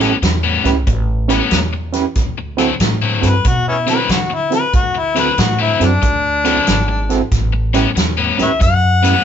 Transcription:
0.00 A2 G3 B3 C#4 E4 G4 A4, snare, closed hi-hat
0.22 E2, muted overdriven electric guitar stroke, snare, closed hi-hat
0.44 A2 G3 B3 C#4
0.64 C#2 C#4 E4 G4 B4, snare, closed hi-hat
0.87 A1, muted overdriven electric guitar stroke, kick, closed hi-hat
1.28 A2 G3 B3 C#4 E4 G4 B4, snare, closed hi-hat
1.40 A2 G3 B3 C#4
1.51 E2, snare, closed hi-hat
1.73 muted overdriven electric guitar stroke
1.92 C#4 E4 G4 B4, snare, closed hi-hat
2.15 D2, kick, snare, closed hi-hat
2.38 muted overdriven electric guitar stroke
2.57 D3 F#3 C4 E4 F#4 A4, snare, closed hi-hat
2.80 A2, muted overdriven electric guitar stroke, snare, closed hi-hat
3.02 D3 F#3 C4 E4
3.21 G2 C4 E4 F#4 A4 B4, snare, closed hi-hat
3.45 B2 F#4, muted overdriven electric guitar stroke, kick, closed hi-hat
3.69 B3 C#4 E4
3.86 D3 F#3 C4 E4 F#4 A4, snare, closed hi-hat
3.90 B4
3.98 D3 F#3 C4 E4
4.09 D3 F#4, snare, closed hi-hat
4.30 muted overdriven electric guitar stroke
4.34 E4
4.50 C4 E4 F#4 A4, snare, closed hi-hat
4.55 B4
4.73 D2 F#4, kick, closed hi-hat
4.95 E4, muted overdriven electric guitar stroke
5.15 D3 F#3 C4 E4 F#4 A4, snare, closed hi-hat
5.19 B4
5.38 A2 F#4, muted overdriven electric guitar stroke, snare, closed hi-hat
5.59 D3 F#3 C4 E4
5.80 F#2 C4 E4 F#4 A4, snare, closed hi-hat
5.84 D4
6.02 D2, muted overdriven electric guitar stroke, kick, closed hi-hat
6.44 D3 F#3 C4 E4 F#4 A4, snare, closed hi-hat
6.56 D3 F#3 C4 E4
6.67 G#1, snare, closed hi-hat
6.88 muted overdriven electric guitar stroke
7.09 C4 E4 F#4 A4, snare, closed hi-hat
7.32 A1, kick, snare, closed hi-hat
7.53 muted overdriven electric guitar stroke
7.74 A2 G3 B3 C#4 E4 G4 B4, snare, closed hi-hat
7.95 E2, muted overdriven electric guitar stroke, snare, closed hi-hat
8.17 A2 G3 B3 C#4
8.38 D2 C#4 E4 G4 B4, snare, closed hi-hat
8.43 B4 C#5 E5
8.60 F#2 F#5, muted overdriven electric guitar stroke, kick, closed hi-hat
9.02 A2 G3 B3 C#4 E4 G4 B4, snare, closed hi-hat
9.13 A2 G3 B3 C#4

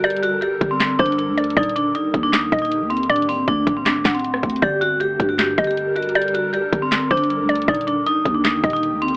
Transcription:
Already playing: G1 D3 G3 A4 A#4
0.04 G4 D5, closed hi-hat
0.10 closed hi-hat
0.17 closed hi-hat
0.23 F#4, closed hi-hat
0.41 G4, closed hi-hat
0.61 G1, kick, closed hi-hat
0.71 C4
0.80 snare, clap, closed hi-hat
0.99 G1 D4 C5, kick, closed hi-hat
1.06 closed hi-hat
1.12 closed hi-hat
1.19 D4, closed hi-hat
1.28 D2
1.38 D5, closed hi-hat
1.44 closed hi-hat
1.50 closed hi-hat
1.57 D#1 D#3 A#3 D#4 G4 D5, kick, closed hi-hat
1.63 closed hi-hat
1.69 closed hi-hat
1.76 D4, closed hi-hat
1.95 D#4, closed hi-hat
2.14 D#2, kick, closed hi-hat
2.23 D4
2.33 D#4, snare, clap, closed hi-hat
2.52 D#1 D#5, kick, closed hi-hat
2.59 D#4, closed hi-hat
2.65 closed hi-hat
2.72 closed hi-hat
2.81 D#2
2.90 C4, closed hi-hat
2.97 closed hi-hat
3.03 closed hi-hat
3.09 D1 D3 A3 C4 D4 F#4 D5, closed hi-hat
3.16 closed hi-hat
3.22 closed hi-hat
3.29 C4, open hi-hat
3.48 D2 D4, kick, closed hi-hat
3.67 D1, kick, closed hi-hat
3.77 C4
3.86 D4, snare, clap, closed hi-hat
4.05 D1 F#5, kick, snare, clap, closed hi-hat
4.10 closed hi-hat
4.14 C4, closed hi-hat
4.19 closed hi-hat
4.24 closed hi-hat
4.34 cross-stick
4.43 D2, kick, closed hi-hat
4.50 closed hi-hat
4.56 closed hi-hat
4.62 G1 D3 G3 G4 A4 A#4 D5, kick, closed hi-hat
4.81 F#4, closed hi-hat
5.00 G4, closed hi-hat
5.20 G2, kick, closed hi-hat
5.29 F#4
5.39 G4, snare, clap, closed hi-hat
5.58 G1 D#5, kick, closed hi-hat
5.64 G4, closed hi-hat
5.71 closed hi-hat
5.77 closed hi-hat
5.96 F#4, closed hi-hat
6.03 closed hi-hat
6.09 closed hi-hat
6.15 G4 D5, closed hi-hat
6.22 closed hi-hat
6.28 closed hi-hat
6.34 F#4, closed hi-hat
6.53 G4, closed hi-hat
6.73 G1, kick, closed hi-hat
6.82 C4
6.92 snare, clap, closed hi-hat
7.11 G1 D4 C5, kick, closed hi-hat
7.17 closed hi-hat
7.24 closed hi-hat
7.30 D4, closed hi-hat
7.39 D2
7.49 D5, closed hi-hat
7.55 closed hi-hat
7.62 closed hi-hat
7.68 D#1 D#3 A#3 D#4 G4 D5, kick, closed hi-hat
7.75 closed hi-hat
7.81 closed hi-hat
7.87 D4, closed hi-hat
8.06 D#4, closed hi-hat
8.25 D#2, kick, closed hi-hat
8.35 D4
8.44 D#4, snare, clap, closed hi-hat
8.64 D#1 D#5, kick, closed hi-hat
8.70 D#4, closed hi-hat
8.76 closed hi-hat
8.83 closed hi-hat
8.92 D#2
9.02 C4, closed hi-hat
9.08 closed hi-hat

